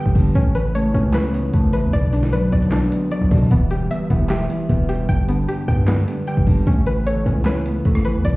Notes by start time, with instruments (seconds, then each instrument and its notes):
Already playing: ambient pad D3 B3 G4 B4, clean electric guitar G3 B3, synth pluck B3 G4 G5
0.06 808-style bass G1, kick
0.15 808-style bass G1, clean electric guitar D3, kick, open hi-hat
0.35 808-style bass A1, clean electric guitar A2, ambient pad C#3 A3 E4, synth pluck C#4, kick, closed hi-hat
0.55 clean electric guitar E3, synth pluck B4, closed hi-hat
0.75 clean electric guitar A3, synth pluck C#5, closed hi-hat
0.94 808-style bass C#2, clean electric guitar B3, synth pluck C#4, kick, closed hi-hat
1.13 clean electric guitar C#4, synth pluck B4, snare, clap, closed hi-hat
1.34 clean electric guitar B3, closed hi-hat
1.53 808-style bass A1, clean electric guitar A3, kick, closed hi-hat
1.73 clean electric guitar E3, synth pluck B4, closed hi-hat
1.83 808-style bass E2
1.93 808-style bass B1, clean electric guitar B2, ambient pad D3 B3 F#4, synth pluck D5, kick, closed hi-hat
2.12 clean electric guitar D3, synth pluck D4, closed hi-hat
2.23 snare
2.33 clean electric guitar F#3, synth pluck B4, closed hi-hat
2.52 808-style bass B1, clean electric guitar B3, synth pluck D5, kick, closed hi-hat
2.62 closed hi-hat
2.71 synth pluck D4, clean electric guitar D4, snare, clap, closed hi-hat
2.92 clean electric guitar B3, closed hi-hat
3.11 clean electric guitar F#3, synth pluck D5, closed hi-hat
3.21 808-style bass B1, kick
3.31 808-style bass B2, clean electric guitar D3, kick, open hi-hat
3.51 808-style bass E1, clean electric guitar E3, ambient pad E3 B3 G4, synth pluck B3, kick, closed hi-hat
3.71 clean electric guitar G3, synth pluck G4, closed hi-hat
3.91 clean electric guitar B3, synth pluck E5, closed hi-hat
4.10 808-style bass E1, synth pluck B3, clean electric guitar E4, kick, closed hi-hat
4.29 synth pluck G4, clean electric guitar E5, snare, clap, closed hi-hat
4.50 clean electric guitar E4, closed hi-hat
4.69 808-style bass E1, clean electric guitar B3, kick, closed hi-hat
4.89 clean electric guitar G3, synth pluck G4, closed hi-hat
5.09 808-style bass G1, clean electric guitar G2, ambient pad D3 G4, synth pluck G5, kick, closed hi-hat
5.28 clean electric guitar D3, synth pluck B3, closed hi-hat
5.48 clean electric guitar G3, synth pluck G4, closed hi-hat
5.68 808-style bass G2, clean electric guitar B3, synth pluck G5, kick, closed hi-hat
5.87 synth pluck B3, clean electric guitar D4, snare, clap, closed hi-hat
6.08 clean electric guitar B3, closed hi-hat
6.27 clean electric guitar G3, synth pluck G5, closed hi-hat
6.37 808-style bass G1, kick
6.47 808-style bass G1, clean electric guitar D3, kick, open hi-hat
6.67 808-style bass A1, clean electric guitar A2, ambient pad C#3 A3 E4 B4, synth pluck C#4, kick, closed hi-hat
6.86 clean electric guitar E3, synth pluck B4, closed hi-hat
7.06 clean electric guitar A3, synth pluck C#5, closed hi-hat
7.26 808-style bass C#2, clean electric guitar B3, synth pluck C#4, kick, closed hi-hat
7.45 clean electric guitar C#4, synth pluck B4, cross-stick, snare, clap, closed hi-hat
7.66 clean electric guitar B3, closed hi-hat
7.85 808-style bass A1, clean electric guitar A3, kick, closed hi-hat
7.95 cross-stick
8.05 clean electric guitar E3, synth pluck B4, closed hi-hat
8.15 808-style bass E2
8.25 808-style bass B1, clean electric guitar B2, ambient pad D3 B3 F#4, synth pluck D5, kick, closed hi-hat